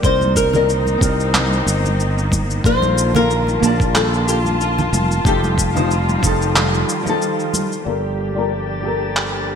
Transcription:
Already playing: string section A#3
0.02 fretless electric bass C2, string section D#3 C4 D#4, nylon-string guitar C4 A#4 C5 D5 D#5, kick, cabasa
0.21 high conga, cabasa
0.36 nylon-string guitar A#4, kick, cabasa
0.52 nylon-string guitar C4 A#4 D5 D#5, low conga, cabasa
0.69 cabasa
0.87 high conga, cabasa
0.98 fretless electric bass C2, nylon-string guitar C4 A#4, kick
1.02 nylon-string guitar D5 D#5, cabasa
1.20 cabasa
1.34 clap, high conga, cabasa
1.53 cabasa
1.66 fretless electric bass G1, cabasa
1.84 high conga, cabasa
2.00 cabasa
2.18 cabasa
2.32 kick, high conga, cabasa
2.50 cabasa
2.64 fretless electric bass A#1, nylon-string guitar A#3 F4 A4 C5 D5, string section F4 A5, kick, cabasa
2.82 high conga, cabasa
2.98 cabasa
3.14 nylon-string guitar A#3 F4 A4 A#4 F5, low conga, cabasa
3.31 cabasa
3.47 high conga, cabasa
3.60 fretless electric bass A#1, nylon-string guitar A#3 F4, cabasa
3.64 nylon-string guitar D5 A5
3.80 kick, cabasa
3.95 nylon-string guitar A4, clap, high conga, cabasa
4.14 cabasa
4.28 nylon-string guitar G4, cabasa
4.45 high conga, cabasa
4.61 nylon-string guitar F4, cabasa
4.78 low conga, cabasa
4.93 fretless electric bass F1, high conga, cabasa
5.11 cabasa
5.24 fretless electric bass F1, string section D#3 G3, nylon-string guitar F3 D#4 G4 A4, kick, cabasa
5.44 high conga, cabasa
5.58 kick, cabasa
5.74 nylon-string guitar F3 D#4 G4 C5, low conga, cabasa
5.91 cabasa
6.09 high conga, cabasa
6.19 fretless electric bass F1, nylon-string guitar F3 D#4, kick
6.24 nylon-string guitar G4 A4, cabasa
6.42 cabasa
6.56 clap, high conga, cabasa
6.74 cabasa
6.89 cabasa
7.03 nylon-string guitar F3 D#4, high conga
7.07 nylon-string guitar G4 A4, cabasa
7.22 cabasa
7.40 cabasa
7.54 high conga, cabasa
7.72 cabasa
7.85 fretless electric bass G1, string section F3 A#3 G4, nylon-string guitar G3 F4 A4 A#4, synth texture D4 D5
8.35 nylon-string guitar G3 F4 A4 A#4
8.80 nylon-string guitar G3 F4
8.85 nylon-string guitar A4 A#4
9.17 clap

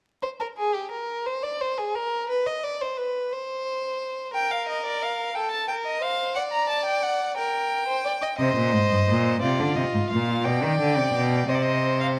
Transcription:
0.23 violin C5
0.40 violin A#4
0.57 violin G#4
0.74 violin G4
0.91 violin A#4
1.26 violin C5
1.43 violin D5
1.61 violin C5
1.78 violin G#4
1.95 violin A#4
2.29 violin B4
2.46 violin D#5
2.63 violin D5
2.81 violin C5
2.98 violin B4
3.33 violin C5
4.34 violin A#4 G5
4.51 violin F5
4.68 violin D#5
4.86 violin D5
5.02 violin F5
5.35 violin A4 G5
5.51 violin A5
5.68 violin A#4 G5
5.86 violin D#5
6.02 violin C5 F5
6.35 violin D5 F#5
6.52 violin A#5
6.69 violin A5
6.85 violin G5
7.03 violin F#5
7.37 violin A#4 G5
7.88 violin C5
8.05 violin D5
8.22 violin D#5
8.38 cello C3, violin C5 D#5
8.57 cello A#2
8.74 cello G#2
8.91 cello G2
9.08 cello A#2
9.42 cello C3, violin F4 D5
9.60 cello D3
9.76 cello C3, violin D#5
9.94 cello G#2
10.10 cello A#2, violin F5
10.44 cello B2, violin D5 G5
10.62 cello D#3
10.80 cello D3
10.97 cello C3
11.14 cello B2
11.48 cello C3, violin C5 D#5
11.54 violin D5
11.62 violin D#5
12.00 violin F5

